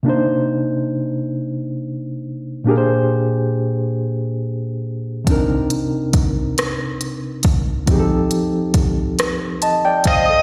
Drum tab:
HH |------|------|xxxxxx|xxxxxx|
SD |------|------|---r--|---r--|
BD |------|------|o-o--o|o-o--o|